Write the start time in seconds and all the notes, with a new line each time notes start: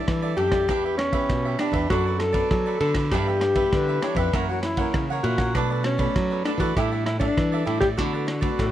Already playing: G3 D4 E4 G4 A4 D5 E5
0.08 E3, kick, cross-stick, ride
0.22 A4 D5 E5
0.37 F#2 G3 D4 E4 G4 A4 D5 E5, ride
0.52 A4 D5 E5, kick, cross-stick, ride
0.68 E2 E3 B3 D4 G4 B4 E5, kick, cross-stick, ride
0.85 G4 B4 E5
0.97 C#4, muted cavaquinho stroke, cross-stick, ride
1.13 B3 G4 B4 E5, kick, ride
1.30 B2, kick, cross-stick, ride
1.45 G4 B4 E5
1.58 B3 D4 G4 B4 E5, cross-stick, ride
1.72 E2 G4 B4 E5, kick, ride
1.90 F#2 F#3 B3 D4 F#4 A4 B4 D5, kick, cross-stick, ride
2.05 A4 B4 D5
2.19 A4, muted cavaquinho stroke, cross-stick, ride
2.33 B3 D4 A4 B4 D5, kick, ride
2.51 F#3 A4, kick, cross-stick, ride
2.66 A4 B4 D5
2.80 D3 B3 D4 A4 B4 D5, ride
2.94 A4 B4 D5, kick, cross-stick, ride
3.11 G2 E3 B3 D4 G4 B4 E5, kick, cross-stick, ride
3.27 G4 B4 E5
3.41 muted cavaquinho stroke, cross-stick, ride
3.55 E3 B3 D4 G4 B4 E5, kick, ride
3.73 D3 B4, kick, cross-stick, ride
3.88 G4 B4 E5
4.01 E3 B3 D4 G4 B4 C#5 E5, cross-stick, ride
4.15 F2 G4 B4 E5, kick, ride
4.33 F#2 E3 A#3 C#4 E4 A#4 C#5 F#5, kick, cross-stick, ride
4.49 F#4 A#4 C#5 F#5
4.63 E4, muted cavaquinho stroke, cross-stick, ride
4.77 E3 A#3 C#4 A#4 C#5 F#5, kick, ride
4.94 C#3, kick, cross-stick, ride
5.10 A#4 C#5 F#5
5.23 A#2 E3 A#3 C#4 E4 F#4 A#4 C#5 F#5, ride
5.38 A#4 C#5 F#5, kick, cross-stick, ride
5.55 B2 F#3 A3 D4 A4 B4 D5, kick, cross-stick, ride
5.70 A4 B4 D5
5.83 C#4, muted cavaquinho stroke, cross-stick, ride
5.98 F#3 A3 A4 B4 D5, kick, ride
6.16 F#2 F#3, kick, cross-stick, ride
6.30 A4 B4 D5
6.44 F#3 A3 D4 A4 B4 D5, cross-stick, ride
6.58 E3 F#4 A4 B4 D5, kick, ride
6.76 A2 G3 D4 E4 G4 A4 D5 E5, kick, cross-stick, ride
6.92 A4 D5 E5
7.06 E4, muted cavaquinho stroke, cross-stick, ride
7.19 G3 D4 E4 A4 D5 E5, kick, ride
7.37 E3, kick, cross-stick, ride
7.52 A4 D5 E5
7.65 A2 G3 D4 E4 G4 A4 D5 E5, ride
7.80 G4 A4 D5 E5, kick, cross-stick, ride
7.97 D3 A3 B3 F#4 A4 B4 D5, kick, cross-stick, ride
8.13 A4 B4 D5
8.27 muted cavaquinho stroke, cross-stick, ride
8.41 A3 B3 F#4 A4 B4 D5, kick, ride
8.58 A2 A4, kick, cross-stick, ride